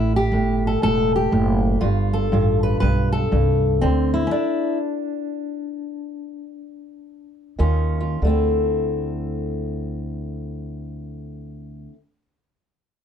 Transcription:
Already playing: A1 A2 E4
0.16 G4
0.32 G1 A2
0.67 A4
0.82 E1 A2 A4
1.16 G4
1.32 F#1 A2
1.81 G1 G2 F4
2.13 A4
2.32 A1 G2 F4
2.63 B4
2.80 B1 G2 B4
3.12 A4
3.32 C2 G2
3.81 D2 D3 C4
4.14 E4
4.27 C#4
4.31 D4
7.59 D#2 D#3 C#4 F4
8.00 F4
8.22 D2 D3 A3
8.27 C4 E4

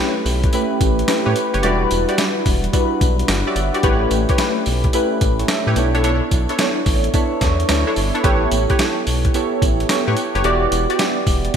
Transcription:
0.00 A3 C#4 E4 G4 B4
0.26 B1, open hi-hat, tambourine
0.44 kick, closed hi-hat
0.53 A3 C#4 E4 G4 B4, closed hi-hat, tambourine
0.81 A1, kick, closed hi-hat, tambourine
0.99 closed hi-hat
1.08 A3 C#4 E4 G4 B4, snare, closed hi-hat, tambourine
1.26 A2 G4 B4 C#5
1.36 closed hi-hat, tambourine
1.54 F#1 G4 B4 C#5, closed hi-hat
1.63 E1 G3 D4 E4 F#4 G4 B4 D5, closed hi-hat
1.91 E1, closed hi-hat, tambourine
2.08 F#4 G4 D5, closed hi-hat
2.18 G3 D4 E4 F#4 B4, snare, closed hi-hat, tambourine
2.46 E1, kick, open hi-hat, tambourine
2.64 closed hi-hat
2.73 G3 D4 E4 F#4 B4, kick, closed hi-hat, tambourine
3.01 B1, kick, closed hi-hat, tambourine
3.19 closed hi-hat
3.28 G1 D5 F#5, snare, closed hi-hat, tambourine
3.47 F#4 G4 C#5 D5 E5
3.56 G1, closed hi-hat, tambourine
3.74 F#4 G4 B4 D5, closed hi-hat
3.83 A1 A3 C#4 E4 G4 B4 C#5, kick, closed hi-hat
4.11 A1, closed hi-hat, tambourine
4.29 G4 B4 C#5, kick, closed hi-hat
4.38 A3 C#4 E4 G4 B4, snare, closed hi-hat, tambourine
4.66 B1, open hi-hat, tambourine
4.84 kick, closed hi-hat
4.93 A3 C#4 E4 G4 B4, closed hi-hat, tambourine
5.21 A1 G4 B4, kick, closed hi-hat, tambourine
5.39 A4 C#5, closed hi-hat
5.48 C#5 E5, snare, closed hi-hat, tambourine
5.67 A2 G4 B4 C#5 E5 G5
5.76 B1 B3 D4 E4 A4 C#5, closed hi-hat, tambourine
5.95 D4 E4 A4 C#5, closed hi-hat
6.04 D4 E4 A4 C#5, closed hi-hat
6.31 B1, kick, closed hi-hat, tambourine
6.49 D4 E4 A4 C#5, closed hi-hat
6.59 B3 D4 E4 A4 C#5, snare, closed hi-hat, tambourine
6.86 A1, kick, open hi-hat, tambourine
7.04 closed hi-hat
7.14 B3 D4 E4 A4 C#5, kick, closed hi-hat, tambourine
7.41 E2, kick, snare, closed hi-hat, tambourine
7.60 closed hi-hat
7.69 D2 B3 D4 E4 A4 C#5, snare, closed hi-hat, tambourine
7.87 D4 E4 A4 C#5
7.96 G1, open hi-hat, tambourine
8.14 D4 E4 A4 C#5, closed hi-hat
8.23 A1 B3 E4 G4 A4 B4 C#5, kick, closed hi-hat
8.51 A1, closed hi-hat, tambourine
8.70 G4 B4 C#5, kick, closed hi-hat
8.79 B3 E4 G4 A4 C#5, snare, closed hi-hat, tambourine
9.07 B1, open hi-hat, tambourine
9.25 kick, closed hi-hat
9.34 B3 E4 G4 A4 C#5, closed hi-hat, tambourine
9.62 A1, kick, closed hi-hat, tambourine
9.80 closed hi-hat
9.89 B3 E4 G4 A4 C#5, snare, closed hi-hat, tambourine
10.07 A2 G4 B4 C#5
10.17 closed hi-hat, tambourine
10.35 F#1 G4 B4 C#5, closed hi-hat
10.44 E1 B3 E4 F#4 G4 D5, closed hi-hat
10.72 E1, closed hi-hat, tambourine
10.90 F#4 G4 D5, closed hi-hat
10.99 B3 E4 F#4 G4 D5, snare, closed hi-hat, tambourine
11.27 E1, kick, open hi-hat, tambourine
11.45 closed hi-hat

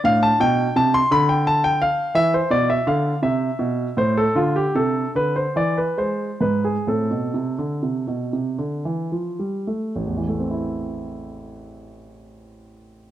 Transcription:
0.04 A2 D4 F5
0.23 A5
0.40 B2 G5
0.76 C3 A5
0.94 C6
1.11 D3 B5
1.29 G5
1.47 A5
1.64 G5
1.82 F5
2.15 E3 E4 E5
2.34 C5
2.50 B2 D5
2.70 E5
2.87 D3 F5
3.22 C3 E5
3.59 B2
3.97 A2 C5
4.17 A4
4.35 D3 D4 F4
4.56 G4
4.75 C3 A4
5.15 D3 B4
5.36 C5
5.56 E3 D5
5.77 B4
5.97 G#3 C5
6.41 G#2 B4
6.64 G#4
6.87 A2 C4 A4
7.11 B2
7.34 C3
7.58 D3
7.83 C3
8.07 B2
8.33 C3
8.58 D3
8.85 E3
9.12 F3
9.39 G3
9.67 A3
9.96 A1
10.06 E2
10.17 E3
10.29 A3
10.39 C4
10.51 E4

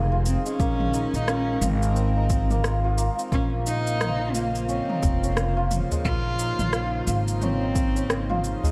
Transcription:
Already playing: F1 D#3 G#3 A#3 C4 D#4 F4 G#4
0.12 F4
0.26 C4, shaker
0.46 G#3 C#4, shaker
0.59 A#1 A#3 A#4, kick, shaker
0.80 mid tom
0.93 D#4, shaker
1.14 A#1 D#4, shaker
1.27 C#4 F4, cross-stick, shaker
1.61 G#1 C4 F4, mid tom, shaker
1.82 shaker
1.96 C4, shaker
2.17 D#4
2.30 kick, shaker
2.50 A#3, mid tom, shaker
2.64 F4, cross-stick, shaker
2.84 F4
2.97 A#3, shaker
3.18 C4, shaker
3.31 A#1 C#3 F3 A#3 C#4 F4 C5, kick, shaker
3.66 D#4, shaker
3.87 shaker
4.00 F4, cross-stick, mid tom, shaker
4.34 A#3 F4, shaker
4.55 shaker
4.68 C4 C#4, shaker
4.89 D#4, mid tom
5.03 F1, kick, udu, shaker
5.23 C#4, shaker
5.37 cross-stick, shaker
5.57 F4
5.71 mid tom, shaker
5.91 G#3, udu, shaker
6.04 A#1 A#3 D#4 F4, kick, udu, shaker
6.39 D#4, shaker
6.59 A#1, mid tom, shaker
6.73 F4, cross-stick, shaker
7.07 G#1 F4, shaker
7.28 shaker
7.41 C4 C#4, mid tom, shaker
7.62 D#4
7.75 kick, shaker
7.95 C#4, shaker
8.10 cross-stick, shaker
8.29 F4, mid tom
8.44 shaker
8.63 G#3, udu, shaker

